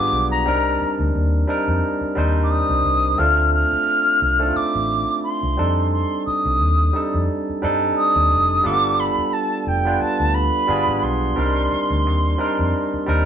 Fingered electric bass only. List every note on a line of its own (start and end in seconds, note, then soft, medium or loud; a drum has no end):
0.00 0.10 G#1 medium
0.13 0.48 B1 medium
0.48 0.75 C2 loud
0.81 muted fingered electric bass stroke medium
0.99 1.12 D2 loud
1.15 1.43 D#2 medium
1.68 1.80 F2 loud
2.01 muted fingered electric bass stroke soft
2.17 2.61 D#2 medium
2.69 2.82 C2 medium
2.85 3.13 C2 medium
3.19 3.63 D2 loud
3.73 muted fingered electric bass stroke soft
4.22 4.50 C2 medium
4.56 muted fingered electric bass stroke soft
4.75 5.03 A1 medium
5.43 5.55 C2 medium
5.59 6.02 F2 medium
6.27 muted fingered electric bass stroke soft
6.46 6.62 C2 medium
6.62 6.89 D#2 medium
7.14 7.26 F2 medium
7.49 muted fingered electric bass stroke soft
7.64 7.91 G2 medium
8.16 8.28 D#2 loud
8.31 8.59 F1 medium
8.66 9.09 G1 loud
9.18 muted fingered electric bass stroke medium
9.67 9.95 F1 medium
10.01 muted fingered electric bass stroke soft
10.20 10.48 D2 medium
10.69 10.84 G1 loud
10.89 11.01 G#1 loud
11.03 11.32 B1 medium
11.38 11.66 C2 loud
11.72 muted fingered electric bass stroke medium
11.90 12.06 D2 medium
12.06 12.34 D#2 medium
12.59 12.71 F2 loud
12.94 muted fingered electric bass stroke soft
13.08 13.25 D#2 loud